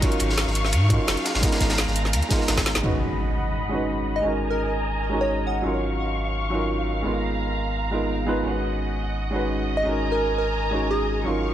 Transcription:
0.01 felt piano F#3 C#4 D#4 F4, string section F5 C#6, kick, closed hi-hat, ride
0.05 felt piano A#4
0.12 closed hi-hat
0.20 sub bass G#1, closed hi-hat, ride
0.30 snare
0.37 snare, closed hi-hat, ride
0.47 sub bass G#1, snare
0.55 closed hi-hat, ride
0.65 snare
0.72 sub bass G#2, closed hi-hat, ride
0.88 felt piano F#3 C#4 D#4 F4, kick, closed hi-hat, ride
0.93 felt piano A#4
1.08 sub bass F#1, snare, closed hi-hat, ride
1.17 closed hi-hat
1.25 snare, closed hi-hat, ride
1.35 sub bass G#1, snare, ride
1.41 felt piano G#3 B3 D#4 F4, string section A#5, kick, snare, closed hi-hat, ride
1.45 felt piano A#4
1.52 snare, closed hi-hat, ride
1.60 sub bass G#1, kick, snare, closed hi-hat, ride
1.70 snare, closed hi-hat, ride
1.78 snare, closed hi-hat, ride
1.87 sub bass G#1, snare
1.96 closed hi-hat
2.05 snare
2.13 sub bass D#2, closed hi-hat, ride
2.22 closed hi-hat
2.28 felt piano G#3 B3 D#4 F4, kick, snare, closed hi-hat, ride
2.33 felt piano A#4
2.41 snare
2.48 sub bass G#1, snare, closed hi-hat, ride
2.57 kick, snare, closed hi-hat, ride
2.66 snare, closed hi-hat
2.75 sub bass G#1, snare, ride
2.81 sub bass G#1, felt piano G#3 C#4 D#4 F#4, string section D#5 F#5 B5, impact
2.86 felt piano B4
3.69 felt piano G#3 C#4 D#4 F#4
3.74 felt piano B4
4.16 digital synth lead D#5
4.21 sub bass G#1, felt piano G#3 C#4 D#4 F#4, string section D#5 G#5 A#5
4.26 felt piano A#4
4.50 digital synth lead A#4
5.09 felt piano G#3 C#4 D#4 F#4
5.14 felt piano A#4
5.21 digital synth lead C#5
5.47 digital synth lead F#5
5.62 sub bass G#1, felt piano F#3 C#4 D#4 F4, string section F5 C#6
5.67 felt piano A#4
6.50 felt piano F#3 C#4 D#4 F4
6.54 felt piano A#4
7.02 sub bass G#1, felt piano G#3 B3 D#4 F4, string section A#5
7.07 felt piano A#4
7.91 felt piano G#3 B3 D#4 F4 A#4
8.26 felt piano G#3 B3 D#4 F4 B4
8.43 sub bass G#1, felt piano G#3 C#4 D#4 F#4, string section D#5 F#5
8.48 felt piano B4
9.30 felt piano G#3 C#4 D#4 F#4
9.35 felt piano B4
9.77 digital synth lead D#5
9.83 sub bass G#1, felt piano G#3 C#4 D#4 F#4, string section G#5 A#5
9.88 felt piano A#4
10.12 digital synth lead A#4
10.38 digital synth lead A#4
10.71 felt piano G#3 C#4 D#4 F#4
10.75 felt piano A#4
10.91 digital synth lead G#4
11.23 sub bass G#1, felt piano F#3 C#4 D#4 F4, string section F5 C#6
11.28 felt piano A#4

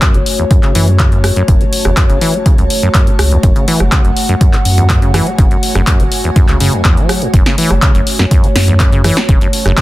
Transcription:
Already playing: analog synth pad A3 F#4 C#5, ambient pad F#4 C#5 G#5
0.02 acid bass F#2, kick, clap, closed hi-hat
0.14 sub bass F#1, acid bass F#3, closed hi-hat
0.26 open hi-hat
0.32 ambient pad A5
0.39 acid bass E2, closed hi-hat
0.51 acid bass F#2, kick, closed hi-hat
0.63 acid bass C#3, clap, closed hi-hat
0.75 sub bass F#2, acid bass E3, open hi-hat
0.88 acid bass A3, closed hi-hat
0.99 acid bass C#3, kick, clap, closed hi-hat
1.12 acid bass F#2, closed hi-hat
1.24 cross-stick, open hi-hat
1.36 acid bass F#2, closed hi-hat
1.48 sub bass F#1, acid bass F#2, kick, closed hi-hat
1.61 acid bass F#3, closed hi-hat
1.73 open hi-hat
1.85 sub bass F#1, acid bass E2, cross-stick, closed hi-hat
1.97 acid bass F#2, kick, clap, closed hi-hat
2.10 sub bass F#1, acid bass C#3, closed hi-hat
2.21 acid bass E3, open hi-hat
2.34 acid bass A3, closed hi-hat
2.46 acid bass C#3, kick, closed hi-hat
2.58 sub bass C#2, acid bass F#2, closed hi-hat
2.70 open hi-hat
2.83 acid bass F#2, closed hi-hat
2.94 acid bass F#2, kick, clap, closed hi-hat
3.07 acid bass F#3, closed hi-hat
3.19 sub bass C#2, cross-stick, open hi-hat
3.31 acid bass E2, closed hi-hat
3.43 sub bass F#1, acid bass F#2, analog synth pad F#5, kick, closed hi-hat
3.56 acid bass C#3, closed hi-hat
3.68 acid bass E3, open hi-hat
3.80 sub bass F#1, acid bass A3, cross-stick
3.92 acid bass C#3, kick, clap, closed hi-hat
4.05 sub bass F#1, acid bass F#2, closed hi-hat
4.17 open hi-hat
4.22 ambient pad G#5
4.29 acid bass F#2, closed hi-hat
4.41 acid bass F#2, kick, closed hi-hat
4.53 acid bass F#3, clap, closed hi-hat
4.65 sub bass F#2, open hi-hat
4.78 acid bass E2, closed hi-hat
4.90 acid bass F#2, kick, clap, closed hi-hat
5.02 acid bass C#3, closed hi-hat
5.14 acid bass E3, cross-stick, open hi-hat
5.27 acid bass A3, closed hi-hat
5.38 sub bass F#1, acid bass C#3, kick, closed hi-hat
5.51 acid bass F#2, closed hi-hat
5.63 open hi-hat
5.75 sub bass F#1, acid bass F#2, cross-stick, closed hi-hat
5.87 acid bass F#2, kick, clap, closed hi-hat
6.00 sub bass F#1, acid bass F#3, closed hi-hat
6.12 open hi-hat
6.24 acid bass E2, closed hi-hat
6.36 acid bass F#2, kick, closed hi-hat
6.48 sub bass C#2, acid bass C#3, clap, closed hi-hat
6.60 sub bass F#2, acid bass C#3, open hi-hat
6.73 acid bass E2, closed hi-hat
6.85 acid bass E2, kick, clap, closed hi-hat
6.97 acid bass F#3, closed hi-hat
7.09 cross-stick, open hi-hat
7.22 acid bass F#2, closed hi-hat
7.34 sub bass F#1, acid bass F#2, analog synth pad C#5, kick, closed hi-hat
7.46 acid bass C#3, snare, closed hi-hat
7.58 acid bass E3, open hi-hat
7.70 sub bass F#1, acid bass A3, cross-stick, closed hi-hat
7.82 acid bass C#3, kick, clap, closed hi-hat
7.95 sub bass F#1, acid bass F#2, closed hi-hat
8.07 open hi-hat
8.13 ambient pad A5
8.19 acid bass F#2, snare
8.31 acid bass F#2, kick, closed hi-hat
8.44 acid bass F#3, closed hi-hat
8.56 sub bass F#2, snare, open hi-hat
8.68 acid bass E2, closed hi-hat
8.80 acid bass F#2, kick, clap, closed hi-hat
8.92 acid bass C#3, closed hi-hat
9.04 acid bass E3, cross-stick, open hi-hat
9.17 acid bass A3, snare
9.29 sub bass F#1, acid bass C#3, kick, closed hi-hat
9.41 acid bass F#2, closed hi-hat
9.53 open hi-hat
9.66 sub bass F#1, acid bass F#2, cross-stick
9.77 acid bass F#2, kick, clap, closed hi-hat

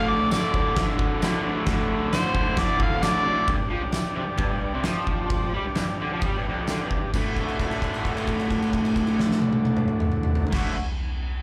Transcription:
Already playing: overdriven electric guitar D2 A2 D3, harmonica F5
0.08 transistor combo organ F#4 A4 D5, harmonica D5
0.31 overdriven electric guitar D2 A2, transistor combo organ F#4 A4 D5, harmonica D5, snare, tambourine, crash
0.35 overdriven electric guitar D3
0.53 overdriven electric guitar D2 A2 D3, transistor combo organ F#4 A4 D5, kick
0.75 overdriven electric guitar D2 A2 D3, transistor combo organ F#4 A4 D5, kick, snare, crash
0.96 transistor combo organ F#4 A4 D5, kick
1.18 overdriven electric guitar D2 A2, transistor combo organ F#4 A4 D5, tambourine
1.22 overdriven electric guitar D3, snare, crash
1.43 overdriven electric guitar D2 A2 D3, transistor combo organ F#4 A4 D5
1.66 overdriven electric guitar D2 A2 D3, transistor combo organ F#4 A4 D5, kick, snare, crash
1.90 transistor combo organ F#4 A4 D5
2.13 overdriven electric guitar D2 A2 D3, transistor combo organ F#4 A4 D5, harmonica C5, snare, tambourine, crash
2.34 overdriven electric guitar D2 A2 D3, transistor combo organ F#4 A4 D5, kick
2.57 overdriven electric guitar D2 A2 D3, transistor combo organ F#4 A4 D5, harmonica D5, kick, snare, crash
2.79 transistor combo organ F#4 A4 D5, harmonica F5, kick
3.02 overdriven electric guitar D2 A2 D3, transistor combo organ F#4 A4 E5, harmonica D5, snare, tambourine, crash
3.22 overdriven electric guitar D2, transistor combo organ F#4 A4 D5
3.26 overdriven electric guitar A2 D3
3.46 overdriven electric guitar G2, transistor combo organ D4 G4 D5, kick, crash
3.60 overdriven electric guitar G2
3.70 overdriven electric guitar F3, transistor combo organ D4 G4 D5
3.82 overdriven electric guitar G2
3.92 transistor combo organ D4 G4 D5, snare, tambourine, crash
4.16 overdriven electric guitar C3, transistor combo organ D4 G4 D5
4.26 overdriven electric guitar G2
4.37 overdriven electric guitar G2, transistor combo organ D4 G4 D5, kick, crash
4.64 transistor combo organ D4 G4 D5
4.74 overdriven electric guitar C3
4.83 overdriven electric guitar F3, transistor combo organ G4, snare, tambourine, crash
4.88 transistor combo organ D4 D5
5.07 transistor combo organ D4 G4, kick
5.12 transistor combo organ D5
5.30 transistor combo organ D4 G4 D5, kick, crash
5.54 overdriven electric guitar G3, transistor combo organ D4 G4 D5
5.65 overdriven electric guitar G2
5.75 overdriven electric guitar G2, transistor combo organ D4 G4 D5, snare, tambourine, crash
5.89 overdriven electric guitar G2
5.99 overdriven electric guitar D3, transistor combo organ D4 G4 D5
6.13 overdriven electric guitar F3
6.21 overdriven electric guitar G3, transistor combo organ D4 G4 D5, kick, crash
6.37 overdriven electric guitar G2
6.47 overdriven electric guitar F2, transistor combo organ D4 G4 D5
6.67 overdriven electric guitar D3, transistor combo organ D4 G4 D5, snare, tambourine, crash
6.81 overdriven electric guitar G2
6.89 transistor combo organ D4 G4 D5, kick
7.14 overdriven electric guitar D2 A2 D3 A3, transistor combo organ F#4 A4 D5, kick, crash, tambourine
7.18 overdriven electric guitar F#4
7.36 kick, crash
7.48 crash
7.60 kick, crash
7.71 crash
7.82 kick, crash
7.94 crash
8.05 kick, crash
8.17 crash
8.27 kick, crash
8.40 crash
8.51 kick, crash
8.62 crash
8.73 kick, crash
8.85 crash
8.96 kick, crash
9.07 crash
9.19 snare
9.31 snare
9.42 high tom
9.53 high tom
9.65 high tom
9.77 mid tom
9.88 mid tom
10.00 mid tom
10.12 mid tom
10.23 mid tom
10.35 floor tom
10.47 floor tom
10.51 overdriven electric guitar D2 A2 D3 A3, transistor combo organ F#4 A4 D5, kick, snare, crash
10.56 overdriven electric guitar F#4

